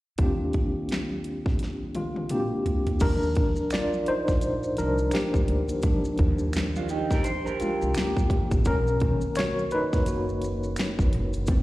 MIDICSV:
0, 0, Header, 1, 6, 480
1, 0, Start_track
1, 0, Key_signature, -3, "major"
1, 0, Tempo, 705882
1, 126, Time_signature, 4, 2, 24, 8
1, 7906, End_track
2, 0, Start_track
2, 0, Title_t, "Clean electric guitar"
2, 0, Program_c, 0, 27
2, 4600, Note_on_c, 0, 62, 53
2, 4601, Note_on_c, 0, 65, 62
2, 4686, Note_off_c, 0, 65, 0
2, 4687, Note_off_c, 0, 62, 0
2, 4693, Note_on_c, 0, 63, 63
2, 4696, Note_on_c, 0, 67, 65
2, 4826, Note_off_c, 0, 67, 0
2, 4827, Note_off_c, 0, 63, 0
2, 4837, Note_on_c, 0, 70, 81
2, 4842, Note_on_c, 0, 67, 69
2, 4924, Note_off_c, 0, 70, 0
2, 4927, Note_on_c, 0, 72, 78
2, 4928, Note_off_c, 0, 67, 0
2, 5063, Note_off_c, 0, 72, 0
2, 5072, Note_on_c, 0, 70, 65
2, 5075, Note_on_c, 0, 67, 57
2, 5764, Note_off_c, 0, 70, 0
2, 5765, Note_off_c, 0, 67, 0
2, 7906, End_track
3, 0, Start_track
3, 0, Title_t, "Tine electric piano"
3, 0, Program_c, 1, 4
3, 124, Note_on_c, 1, 58, 60
3, 132, Note_on_c, 1, 60, 55
3, 140, Note_on_c, 1, 62, 57
3, 145, Note_on_c, 1, 65, 54
3, 154, Note_on_c, 1, 67, 67
3, 251, Control_c, 1, 64, 127
3, 1324, Note_off_c, 1, 65, 0
3, 1332, Note_on_c, 1, 65, 64
3, 1345, Note_on_c, 1, 56, 52
3, 1439, Note_off_c, 1, 65, 0
3, 1448, Note_off_c, 1, 56, 0
3, 1538, Note_off_c, 1, 58, 0
3, 1542, Note_off_c, 1, 60, 0
3, 1546, Note_off_c, 1, 62, 0
3, 1553, Note_off_c, 1, 67, 0
3, 1569, Note_on_c, 1, 58, 44
3, 1574, Note_on_c, 1, 60, 43
3, 1574, Note_on_c, 1, 67, 72
3, 1579, Note_on_c, 1, 62, 41
3, 1580, Note_on_c, 1, 65, 42
3, 1583, Note_off_c, 1, 58, 0
3, 1584, Note_on_c, 1, 58, 59
3, 1584, Note_on_c, 1, 66, 41
3, 1622, Note_off_c, 1, 67, 0
3, 1628, Note_off_c, 1, 66, 0
3, 1631, Note_on_c, 1, 67, 52
3, 2028, Note_off_c, 1, 58, 0
3, 2050, Note_off_c, 1, 60, 0
3, 2051, Note_off_c, 1, 62, 0
3, 2051, Note_on_c, 1, 53, 51
3, 2052, Note_on_c, 1, 70, 97
3, 2053, Note_off_c, 1, 65, 0
3, 2054, Control_c, 1, 64, 0
3, 2055, Note_on_c, 1, 55, 46
3, 2059, Note_on_c, 1, 62, 69
3, 2078, Note_off_c, 1, 67, 0
3, 2162, Control_c, 1, 64, 127
3, 2506, Note_off_c, 1, 62, 0
3, 2534, Note_on_c, 1, 74, 91
3, 2541, Note_on_c, 1, 65, 72
3, 2544, Note_off_c, 1, 70, 0
3, 2641, Note_off_c, 1, 74, 0
3, 2646, Note_off_c, 1, 65, 0
3, 2775, Note_on_c, 1, 72, 97
3, 2783, Note_on_c, 1, 63, 75
3, 3224, Note_off_c, 1, 72, 0
3, 3228, Note_off_c, 1, 63, 0
3, 3245, Note_off_c, 1, 53, 0
3, 3249, Note_off_c, 1, 55, 0
3, 3252, Note_on_c, 1, 70, 84
3, 3253, Note_on_c, 1, 53, 46
3, 3257, Note_on_c, 1, 55, 44
3, 3258, Note_on_c, 1, 62, 64
3, 3466, Note_off_c, 1, 53, 0
3, 3468, Note_off_c, 1, 55, 0
3, 3478, Note_off_c, 1, 62, 0
3, 3492, Note_on_c, 1, 67, 69
3, 3496, Note_off_c, 1, 70, 0
3, 3503, Note_on_c, 1, 58, 53
3, 3846, Note_off_c, 1, 67, 0
3, 3852, Note_off_c, 1, 58, 0
3, 3971, Note_on_c, 1, 53, 52
3, 3973, Note_on_c, 1, 55, 51
3, 3980, Note_on_c, 1, 62, 60
3, 4306, Note_off_c, 1, 53, 0
3, 4307, Note_off_c, 1, 55, 0
3, 4311, Note_off_c, 1, 62, 0
3, 5175, Note_on_c, 1, 65, 72
3, 5184, Note_on_c, 1, 56, 60
3, 5394, Note_off_c, 1, 65, 0
3, 5399, Note_off_c, 1, 56, 0
3, 5414, Note_on_c, 1, 67, 78
3, 5424, Note_on_c, 1, 58, 62
3, 5868, Note_off_c, 1, 58, 0
3, 5895, Control_c, 1, 64, 0
3, 5896, Note_on_c, 1, 70, 99
3, 5905, Note_off_c, 1, 67, 0
3, 5906, Note_on_c, 1, 61, 74
3, 6022, Control_c, 1, 64, 127
3, 6137, Note_on_c, 1, 51, 52
3, 6138, Note_off_c, 1, 61, 0
3, 6140, Note_on_c, 1, 58, 48
3, 6146, Note_on_c, 1, 61, 58
3, 6344, Note_off_c, 1, 70, 0
3, 6370, Note_on_c, 1, 73, 97
3, 6386, Note_on_c, 1, 66, 71
3, 6469, Note_off_c, 1, 51, 0
3, 6471, Note_off_c, 1, 58, 0
3, 6474, Note_off_c, 1, 61, 0
3, 6600, Note_off_c, 1, 66, 0
3, 6610, Note_on_c, 1, 71, 99
3, 6616, Note_off_c, 1, 73, 0
3, 6626, Note_on_c, 1, 63, 72
3, 6717, Note_off_c, 1, 71, 0
3, 6729, Note_off_c, 1, 63, 0
3, 6855, Note_on_c, 1, 66, 76
3, 6870, Note_on_c, 1, 58, 55
3, 7544, Note_off_c, 1, 66, 0
3, 7551, Note_off_c, 1, 58, 0
3, 7816, Control_c, 1, 64, 0
3, 7818, Note_on_c, 1, 55, 52
3, 7820, Note_on_c, 1, 58, 46
3, 7824, Note_on_c, 1, 60, 61
3, 7906, Note_off_c, 1, 55, 0
3, 7906, Note_off_c, 1, 58, 0
3, 7906, Note_off_c, 1, 60, 0
3, 7906, End_track
4, 0, Start_track
4, 0, Title_t, "Upright bass"
4, 0, Program_c, 2, 32
4, 133, Note_on_c, 2, 39, 65
4, 2022, Note_off_c, 2, 39, 0
4, 2054, Note_on_c, 2, 39, 86
4, 2361, Note_off_c, 2, 39, 0
4, 2916, Note_on_c, 2, 34, 76
4, 3185, Note_off_c, 2, 34, 0
4, 3259, Note_on_c, 2, 36, 83
4, 3448, Note_off_c, 2, 36, 0
4, 3636, Note_on_c, 2, 38, 77
4, 3711, Note_off_c, 2, 38, 0
4, 3735, Note_on_c, 2, 38, 81
4, 3925, Note_off_c, 2, 38, 0
4, 4214, Note_on_c, 2, 39, 90
4, 4807, Note_off_c, 2, 39, 0
4, 5319, Note_on_c, 2, 36, 82
4, 5393, Note_off_c, 2, 36, 0
4, 5417, Note_on_c, 2, 38, 78
4, 5607, Note_off_c, 2, 38, 0
4, 5795, Note_on_c, 2, 32, 77
4, 5871, Note_off_c, 2, 32, 0
4, 5894, Note_on_c, 2, 35, 99
4, 6201, Note_off_c, 2, 35, 0
4, 6757, Note_on_c, 2, 30, 87
4, 7303, Note_off_c, 2, 30, 0
4, 7478, Note_on_c, 2, 34, 73
4, 7553, Note_off_c, 2, 34, 0
4, 7577, Note_on_c, 2, 30, 90
4, 7815, Note_off_c, 2, 30, 0
4, 7815, Note_on_c, 2, 32, 92
4, 7906, Note_off_c, 2, 32, 0
4, 7906, End_track
5, 0, Start_track
5, 0, Title_t, "Muted upright bass strokes"
5, 2441, Note_on_c, 9, 29, 41
5, 2509, Note_off_c, 9, 29, 0
5, 2778, Note_on_c, 9, 29, 43
5, 2846, Note_off_c, 9, 29, 0
5, 5176, Note_on_c, 9, 29, 40
5, 5244, Note_off_c, 9, 29, 0
5, 6278, Note_on_c, 9, 29, 45
5, 6346, Note_off_c, 9, 29, 0
5, 6617, Note_on_c, 9, 29, 45
5, 6685, Note_off_c, 9, 29, 0
5, 7906, End_track
6, 0, Start_track
6, 0, Title_t, "Drums"
6, 122, Note_on_c, 9, 42, 57
6, 127, Note_on_c, 9, 36, 93
6, 190, Note_off_c, 9, 42, 0
6, 195, Note_off_c, 9, 36, 0
6, 363, Note_on_c, 9, 42, 43
6, 370, Note_on_c, 9, 36, 63
6, 431, Note_off_c, 9, 42, 0
6, 438, Note_off_c, 9, 36, 0
6, 604, Note_on_c, 9, 42, 65
6, 628, Note_on_c, 9, 38, 90
6, 628, Note_on_c, 9, 39, 70
6, 672, Note_off_c, 9, 42, 0
6, 696, Note_off_c, 9, 38, 0
6, 696, Note_off_c, 9, 39, 0
6, 845, Note_on_c, 9, 42, 47
6, 913, Note_off_c, 9, 42, 0
6, 992, Note_on_c, 9, 36, 76
6, 1005, Note_on_c, 9, 38, 25
6, 1060, Note_off_c, 9, 36, 0
6, 1073, Note_off_c, 9, 38, 0
6, 1082, Note_on_c, 9, 42, 61
6, 1107, Note_on_c, 9, 38, 41
6, 1150, Note_off_c, 9, 42, 0
6, 1175, Note_off_c, 9, 38, 0
6, 1323, Note_on_c, 9, 42, 54
6, 1326, Note_on_c, 9, 48, 54
6, 1391, Note_off_c, 9, 42, 0
6, 1394, Note_off_c, 9, 48, 0
6, 1470, Note_on_c, 9, 48, 51
6, 1538, Note_off_c, 9, 48, 0
6, 1560, Note_on_c, 9, 42, 77
6, 1565, Note_on_c, 9, 47, 60
6, 1628, Note_off_c, 9, 42, 0
6, 1633, Note_off_c, 9, 47, 0
6, 1807, Note_on_c, 9, 43, 74
6, 1808, Note_on_c, 9, 42, 56
6, 1875, Note_off_c, 9, 43, 0
6, 1876, Note_off_c, 9, 42, 0
6, 1949, Note_on_c, 9, 42, 42
6, 1950, Note_on_c, 9, 43, 70
6, 2017, Note_off_c, 9, 42, 0
6, 2018, Note_off_c, 9, 43, 0
6, 2039, Note_on_c, 9, 82, 57
6, 2042, Note_on_c, 9, 42, 71
6, 2046, Note_on_c, 9, 49, 81
6, 2047, Note_on_c, 9, 36, 97
6, 2107, Note_off_c, 9, 82, 0
6, 2110, Note_off_c, 9, 42, 0
6, 2114, Note_off_c, 9, 49, 0
6, 2115, Note_off_c, 9, 36, 0
6, 2193, Note_on_c, 9, 82, 35
6, 2261, Note_off_c, 9, 82, 0
6, 2281, Note_on_c, 9, 42, 52
6, 2289, Note_on_c, 9, 36, 77
6, 2349, Note_off_c, 9, 42, 0
6, 2357, Note_off_c, 9, 36, 0
6, 2421, Note_on_c, 9, 82, 43
6, 2489, Note_off_c, 9, 82, 0
6, 2519, Note_on_c, 9, 42, 72
6, 2520, Note_on_c, 9, 26, 58
6, 2520, Note_on_c, 9, 82, 54
6, 2542, Note_on_c, 9, 38, 91
6, 2542, Note_on_c, 9, 39, 78
6, 2587, Note_off_c, 9, 42, 0
6, 2588, Note_off_c, 9, 26, 0
6, 2588, Note_off_c, 9, 82, 0
6, 2610, Note_off_c, 9, 38, 0
6, 2610, Note_off_c, 9, 39, 0
6, 2674, Note_on_c, 9, 82, 39
6, 2742, Note_off_c, 9, 82, 0
6, 2762, Note_on_c, 9, 82, 35
6, 2763, Note_on_c, 9, 42, 56
6, 2830, Note_off_c, 9, 82, 0
6, 2831, Note_off_c, 9, 42, 0
6, 2910, Note_on_c, 9, 82, 49
6, 2911, Note_on_c, 9, 36, 83
6, 2924, Note_on_c, 9, 38, 28
6, 2978, Note_off_c, 9, 82, 0
6, 2979, Note_off_c, 9, 36, 0
6, 2992, Note_off_c, 9, 38, 0
6, 3001, Note_on_c, 9, 42, 69
6, 3006, Note_on_c, 9, 82, 60
6, 3069, Note_off_c, 9, 42, 0
6, 3074, Note_off_c, 9, 82, 0
6, 3150, Note_on_c, 9, 82, 41
6, 3218, Note_off_c, 9, 82, 0
6, 3242, Note_on_c, 9, 42, 57
6, 3252, Note_on_c, 9, 82, 47
6, 3310, Note_off_c, 9, 42, 0
6, 3320, Note_off_c, 9, 82, 0
6, 3388, Note_on_c, 9, 82, 42
6, 3456, Note_off_c, 9, 82, 0
6, 3477, Note_on_c, 9, 26, 56
6, 3477, Note_on_c, 9, 82, 54
6, 3479, Note_on_c, 9, 42, 79
6, 3501, Note_on_c, 9, 38, 98
6, 3501, Note_on_c, 9, 39, 81
6, 3545, Note_off_c, 9, 26, 0
6, 3545, Note_off_c, 9, 82, 0
6, 3547, Note_off_c, 9, 42, 0
6, 3569, Note_off_c, 9, 38, 0
6, 3569, Note_off_c, 9, 39, 0
6, 3630, Note_on_c, 9, 36, 85
6, 3640, Note_on_c, 9, 82, 38
6, 3698, Note_off_c, 9, 36, 0
6, 3708, Note_off_c, 9, 82, 0
6, 3727, Note_on_c, 9, 42, 58
6, 3795, Note_off_c, 9, 42, 0
6, 3866, Note_on_c, 9, 82, 49
6, 3870, Note_on_c, 9, 42, 45
6, 3934, Note_off_c, 9, 82, 0
6, 3938, Note_off_c, 9, 42, 0
6, 3957, Note_on_c, 9, 82, 56
6, 3962, Note_on_c, 9, 42, 68
6, 3967, Note_on_c, 9, 36, 97
6, 4025, Note_off_c, 9, 82, 0
6, 4030, Note_off_c, 9, 42, 0
6, 4035, Note_off_c, 9, 36, 0
6, 4112, Note_on_c, 9, 82, 38
6, 4180, Note_off_c, 9, 82, 0
6, 4200, Note_on_c, 9, 42, 49
6, 4209, Note_on_c, 9, 36, 77
6, 4268, Note_off_c, 9, 42, 0
6, 4277, Note_off_c, 9, 36, 0
6, 4343, Note_on_c, 9, 82, 42
6, 4411, Note_off_c, 9, 82, 0
6, 4441, Note_on_c, 9, 42, 75
6, 4442, Note_on_c, 9, 26, 56
6, 4442, Note_on_c, 9, 82, 56
6, 4465, Note_on_c, 9, 38, 100
6, 4465, Note_on_c, 9, 39, 77
6, 4509, Note_off_c, 9, 42, 0
6, 4510, Note_off_c, 9, 26, 0
6, 4510, Note_off_c, 9, 82, 0
6, 4533, Note_off_c, 9, 38, 0
6, 4533, Note_off_c, 9, 39, 0
6, 4595, Note_on_c, 9, 82, 41
6, 4663, Note_off_c, 9, 82, 0
6, 4684, Note_on_c, 9, 82, 38
6, 4686, Note_on_c, 9, 42, 53
6, 4752, Note_off_c, 9, 82, 0
6, 4754, Note_off_c, 9, 42, 0
6, 4832, Note_on_c, 9, 36, 84
6, 4835, Note_on_c, 9, 82, 50
6, 4848, Note_on_c, 9, 38, 27
6, 4900, Note_off_c, 9, 36, 0
6, 4903, Note_off_c, 9, 82, 0
6, 4916, Note_off_c, 9, 38, 0
6, 4924, Note_on_c, 9, 42, 70
6, 4932, Note_on_c, 9, 82, 63
6, 4992, Note_off_c, 9, 42, 0
6, 5000, Note_off_c, 9, 82, 0
6, 5077, Note_on_c, 9, 82, 43
6, 5145, Note_off_c, 9, 82, 0
6, 5166, Note_on_c, 9, 42, 64
6, 5178, Note_on_c, 9, 82, 48
6, 5234, Note_off_c, 9, 42, 0
6, 5246, Note_off_c, 9, 82, 0
6, 5316, Note_on_c, 9, 82, 44
6, 5384, Note_off_c, 9, 82, 0
6, 5402, Note_on_c, 9, 42, 85
6, 5403, Note_on_c, 9, 26, 60
6, 5403, Note_on_c, 9, 82, 58
6, 5424, Note_on_c, 9, 38, 105
6, 5424, Note_on_c, 9, 39, 78
6, 5470, Note_off_c, 9, 42, 0
6, 5471, Note_off_c, 9, 26, 0
6, 5471, Note_off_c, 9, 82, 0
6, 5492, Note_off_c, 9, 38, 0
6, 5492, Note_off_c, 9, 39, 0
6, 5553, Note_on_c, 9, 36, 84
6, 5563, Note_on_c, 9, 82, 37
6, 5621, Note_off_c, 9, 36, 0
6, 5631, Note_off_c, 9, 82, 0
6, 5643, Note_on_c, 9, 36, 80
6, 5648, Note_on_c, 9, 42, 61
6, 5711, Note_off_c, 9, 36, 0
6, 5716, Note_off_c, 9, 42, 0
6, 5790, Note_on_c, 9, 36, 79
6, 5790, Note_on_c, 9, 42, 47
6, 5790, Note_on_c, 9, 82, 49
6, 5858, Note_off_c, 9, 36, 0
6, 5858, Note_off_c, 9, 42, 0
6, 5858, Note_off_c, 9, 82, 0
6, 5880, Note_on_c, 9, 82, 56
6, 5883, Note_on_c, 9, 42, 70
6, 5888, Note_on_c, 9, 36, 106
6, 5948, Note_off_c, 9, 82, 0
6, 5951, Note_off_c, 9, 42, 0
6, 5956, Note_off_c, 9, 36, 0
6, 6035, Note_on_c, 9, 82, 36
6, 6103, Note_off_c, 9, 82, 0
6, 6122, Note_on_c, 9, 42, 52
6, 6130, Note_on_c, 9, 36, 78
6, 6190, Note_off_c, 9, 42, 0
6, 6198, Note_off_c, 9, 36, 0
6, 6263, Note_on_c, 9, 82, 42
6, 6331, Note_off_c, 9, 82, 0
6, 6360, Note_on_c, 9, 42, 75
6, 6362, Note_on_c, 9, 26, 58
6, 6362, Note_on_c, 9, 82, 55
6, 6384, Note_on_c, 9, 38, 99
6, 6384, Note_on_c, 9, 39, 75
6, 6428, Note_off_c, 9, 42, 0
6, 6430, Note_off_c, 9, 26, 0
6, 6430, Note_off_c, 9, 82, 0
6, 6452, Note_off_c, 9, 38, 0
6, 6452, Note_off_c, 9, 39, 0
6, 6518, Note_on_c, 9, 82, 39
6, 6586, Note_off_c, 9, 82, 0
6, 6603, Note_on_c, 9, 82, 36
6, 6604, Note_on_c, 9, 42, 55
6, 6671, Note_off_c, 9, 82, 0
6, 6672, Note_off_c, 9, 42, 0
6, 6753, Note_on_c, 9, 36, 92
6, 6753, Note_on_c, 9, 82, 49
6, 6767, Note_on_c, 9, 38, 29
6, 6821, Note_off_c, 9, 36, 0
6, 6821, Note_off_c, 9, 82, 0
6, 6835, Note_off_c, 9, 38, 0
6, 6842, Note_on_c, 9, 42, 73
6, 6850, Note_on_c, 9, 82, 62
6, 6910, Note_off_c, 9, 42, 0
6, 6918, Note_off_c, 9, 82, 0
6, 6997, Note_on_c, 9, 82, 39
6, 7065, Note_off_c, 9, 82, 0
6, 7083, Note_on_c, 9, 42, 61
6, 7099, Note_on_c, 9, 82, 52
6, 7151, Note_off_c, 9, 42, 0
6, 7167, Note_off_c, 9, 82, 0
6, 7232, Note_on_c, 9, 82, 41
6, 7300, Note_off_c, 9, 82, 0
6, 7319, Note_on_c, 9, 26, 59
6, 7319, Note_on_c, 9, 42, 82
6, 7319, Note_on_c, 9, 82, 58
6, 7340, Note_on_c, 9, 38, 102
6, 7340, Note_on_c, 9, 39, 83
6, 7387, Note_off_c, 9, 26, 0
6, 7387, Note_off_c, 9, 42, 0
6, 7387, Note_off_c, 9, 82, 0
6, 7408, Note_off_c, 9, 38, 0
6, 7408, Note_off_c, 9, 39, 0
6, 7472, Note_on_c, 9, 36, 85
6, 7481, Note_on_c, 9, 82, 40
6, 7540, Note_off_c, 9, 36, 0
6, 7549, Note_off_c, 9, 82, 0
6, 7567, Note_on_c, 9, 42, 59
6, 7635, Note_off_c, 9, 42, 0
6, 7707, Note_on_c, 9, 82, 46
6, 7711, Note_on_c, 9, 42, 47
6, 7775, Note_off_c, 9, 82, 0
6, 7779, Note_off_c, 9, 42, 0
6, 7797, Note_on_c, 9, 82, 61
6, 7803, Note_on_c, 9, 42, 68
6, 7808, Note_on_c, 9, 36, 96
6, 7865, Note_off_c, 9, 82, 0
6, 7871, Note_off_c, 9, 42, 0
6, 7876, Note_off_c, 9, 36, 0
6, 7906, End_track
0, 0, End_of_file